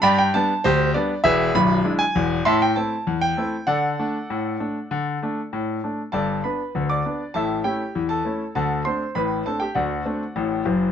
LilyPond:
<<
  \new Staff \with { instrumentName = "Grand piano" } { \time 2/4 \key g \major \tempo 4 = 99 <d'' g'' b''>16 g''16 a''8 <g' c''>8 d''8 | <gis' b' e''>8 b''8. gis''8. | <e'' a'' c'''>16 g''16 a''8. g''8. | <a' d'' fis''>2~ |
<a' d'' fis''>4. r8 | <a' d'' a''>8 <b' b''>8. <d'' d'''>8. | <a' e'' a''>8 <g' g''>8. <a' a''>8. | <a' fis'' a''>8 <c'' c'''>8 <b' b''>8 <a' a''>16 <g' g''>16 |
<fis' d'' fis''>4. r8 | }
  \new Staff \with { instrumentName = "Grand piano" } { \time 2/4 \key g \major g,8 <g b d'>8 d,8 <g b d'>8 | <e,, e,>8 <b,,, b,,>8 <gis d' e'>8 <e,, e,>8 | a,8 <a c' e'>8 e,8 <a c' e'>8 | d8 <a d'>8 a,8 <a d'>8 |
d8 <a d'>8 a,8 <a d'>8 | <g,, g,>8 <b d'>8 <d, d>8 <b d'>8 | <a,, a,>8 <a cis' e'>8 <e, e>8 <a cis' e'>8 | <d, d>8 <a c' d'>8 <a,, a,>8 <a c' d'>8 |
<d, d>8 <a c' d'>8 <a,, a,>8 <fis,, fis,>8 | }
>>